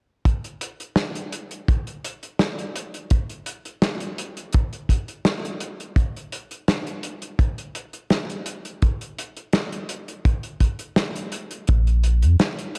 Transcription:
0.25 kick, closed hi-hat
0.44 closed hi-hat
0.61 closed hi-hat
0.80 closed hi-hat
0.96 snare, closed hi-hat
1.15 closed hi-hat
1.32 closed hi-hat
1.51 closed hi-hat
1.68 kick, closed hi-hat
1.87 closed hi-hat
2.05 closed hi-hat
2.23 closed hi-hat
2.39 snare, closed hi-hat
2.59 closed hi-hat
2.76 closed hi-hat
2.94 closed hi-hat
3.11 kick, closed hi-hat
3.30 closed hi-hat
3.46 closed hi-hat
3.65 closed hi-hat
3.82 snare, closed hi-hat
4.00 closed hi-hat
4.18 closed hi-hat
4.37 closed hi-hat
4.53 kick, closed hi-hat
4.73 closed hi-hat
4.89 kick, closed hi-hat
5.08 closed hi-hat
5.25 snare, closed hi-hat
5.45 closed hi-hat
5.60 closed hi-hat
5.80 closed hi-hat
5.96 kick, closed hi-hat
6.16 closed hi-hat
6.32 closed hi-hat
6.51 closed hi-hat
6.68 snare, closed hi-hat
6.87 closed hi-hat
7.03 closed hi-hat
7.22 closed hi-hat
7.39 kick, closed hi-hat
7.58 closed hi-hat
7.75 closed hi-hat
7.93 closed hi-hat
8.10 snare, closed hi-hat
8.30 closed hi-hat
8.46 closed hi-hat
8.65 closed hi-hat
8.82 kick, closed hi-hat
9.01 closed hi-hat
9.18 closed hi-hat
9.37 closed hi-hat
9.53 snare, closed hi-hat
9.73 closed hi-hat
9.89 closed hi-hat
10.08 closed hi-hat
10.25 kick, closed hi-hat
10.43 closed hi-hat
10.60 kick, closed hi-hat
10.79 closed hi-hat
10.96 snare, closed hi-hat
11.16 closed hi-hat
11.32 closed hi-hat
11.51 closed hi-hat
11.67 A#1, kick, closed hi-hat
11.87 closed hi-hat
12.03 closed hi-hat
12.22 F2, closed hi-hat
12.39 snare, closed hi-hat
12.59 closed hi-hat
12.75 closed hi-hat

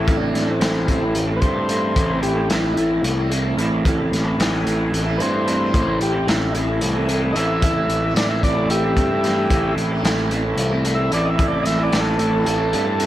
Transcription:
Already playing: A1 A2 E3 A3
0.00 E4
0.06 A2 E3 A3 C4 E4 A4, kick, closed hi-hat
0.17 C4 D4 E4 A4
0.22 A3
0.34 A1 D4, snare, closed hi-hat
0.46 A3 C4 E4 A4
0.51 C4
0.58 A1 A2 E3 A3 C4 E4 A4, snare, closed hi-hat
0.86 A1 A3 C4 E4 A4, kick, closed hi-hat
1.00 A3 C4 E4 A4
1.15 A1, closed hi-hat
1.21 A2
1.27 A3 C4 E4 A4
1.36 B4
1.40 G2 A3 C4 E4 A4 C5, kick, closed hi-hat
1.54 A3 C4 E4 A4
1.68 A2 E3 A3 C4 E4 A4, closed hi-hat
1.84 E3
1.94 A1 A2 E3 A3 C4 E4 A4, kick, closed hi-hat
2.08 A3 C4 E4 A4
2.23 A1 G4, closed hi-hat
2.35 A3 C4 E4 A4
2.44 A3
2.49 A1 A2 E3 A3 C4 E4 A4, snare, closed hi-hat
2.73 A3 C4 D#4
2.77 A1 E4 A4, closed hi-hat
2.89 A3 C4 E4 A4
3.03 C2 A3, closed hi-hat
3.16 A3 C4 E4 A4
3.30 A3 C4 E4 A4, closed hi-hat
3.43 A3 C4 E4 A4
3.56 A1 A2 E3 A3 C4 E4 A4, closed hi-hat
3.71 A2
3.84 A2 E3 A3 C4 E4 A4, kick, closed hi-hat
3.98 A3 C4 E4 A4
4.12 A1, snare, closed hi-hat
4.24 A3 C4 E4 A4
4.32 E3
4.38 A1 A2 E3 A3 C4 E4 A4, snare, closed hi-hat
4.65 A1 A3 C4 E4 A4, closed hi-hat
4.79 A3 C4 E4 A4
4.93 A1 A3, closed hi-hat
5.05 A3 C4 E4 A4
5.17 G2 A3 C4 E4 A4 B4, closed hi-hat
5.22 C5
5.31 A3 C4 E4 A4
5.45 A2 E3 A3 C4 E4 A4, closed hi-hat
5.56 A3
5.72 A1 A2 E3 A3 C4 E4 A4, kick, closed hi-hat
5.85 A3 C4 E4 A4
6.00 A1 G4, closed hi-hat
6.12 A3 C4 E4 A4
6.19 A2
6.26 A1 A2 E3 A3 C4 E4 A4, snare, closed hi-hat
6.52 A1 A3 C4 D#4 E4 A4, closed hi-hat
6.56 E4
6.67 A3 C4 E4 A4
6.80 C2 E3, closed hi-hat
6.94 A3 C4 E4 A4
7.07 A3 C4 E4 A4, closed hi-hat
7.21 A3 C4 E4 A4
7.33 A1 A2 E3 A3 C4 E4 A4 D#5, closed hi-hat
7.37 A3 E5
7.61 A2 E3 A3 C4 E4 A4, kick, closed hi-hat
7.76 A3 C4 E4 A4
7.88 A1, closed hi-hat
8.01 A3 C4 E4 A4
8.15 A1 A2 E3 A3 C4 E4 A4 D5, snare, closed hi-hat
8.31 E5
8.43 A1 A3 C4 E4 A4 D5, kick, closed hi-hat
8.56 A3 C4 E4 A4
8.64 A2
8.69 A1 G4 E5, closed hi-hat
8.82 A3 C4 E4 A4
8.96 G2 A3 C4 E4 A4, kick, closed hi-hat
9.10 A3 C4 E4 A4
9.22 A2 E3 A3 C4 E4 A4, snare, closed hi-hat
9.50 A1 A2 E3 A3 C4 E4 A4, kick, closed hi-hat
9.63 A3 C4 E4 A4
9.77 A1, closed hi-hat
9.85 A3
9.89 A3 C4 E4 A4
10.03 A1 A2 E3 A3 C4 E4 A4, snare, closed hi-hat
10.30 A1 A3 C4 E4 A4, closed hi-hat
10.43 A3 C4 E4 A4
10.48 A3
10.57 C2, closed hi-hat
10.71 A3 C4 E4 A4
10.84 A3 C4 E4 A4, closed hi-hat
10.95 E4 A4 E5
10.99 A3 C4
11.10 A1 A2 E3 A3 C4 E4 A4 D5, closed hi-hat
11.25 D#5
11.30 E5
11.38 A2 E3 A3 C4 E4 A4, kick, closed hi-hat
11.48 A4 D5
11.52 A3 C4 E4
11.63 A1 D#5 E5, snare, closed hi-hat
11.70 E3
11.78 A3 C4 E4 A4
11.83 D5
11.90 A1 A2 E3 A3 C4 E4 A4, snare, closed hi-hat
12.00 A4
12.18 A1 A3 C4 E4 A4, closed hi-hat
12.32 A3 C4 E4 A4
12.46 A1, closed hi-hat
12.58 A3 C4 E4 A4
12.71 G2 A3 C4 E4 A4, closed hi-hat
12.85 A3 C4 E4 A4
12.94 A3
12.98 A2 E3 A3 C4 E4 A4, closed hi-hat

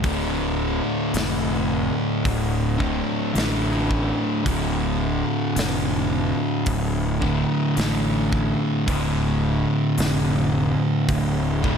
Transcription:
0.02 D1 D2 A2 D3, kick, open hi-hat
1.14 F1, snare, open hi-hat
2.25 D1, kick, open hi-hat
2.78 D2 A2 D3, kick
3.34 A1 D2 A2 D3, open hi-hat
3.38 snare
3.91 kick
4.45 D1 D2 A2 D3, kick, open hi-hat
5.56 F1, snare, open hi-hat
6.66 D1, kick, open hi-hat
7.21 D2 A2 D3, kick
7.76 A1 D2 A2 D3, snare, open hi-hat
8.33 kick
8.87 D1 D2 A2 D3, kick, open hi-hat
9.98 F1, snare, open hi-hat
11.09 D1, kick, open hi-hat
11.62 D2 A2 D3, kick

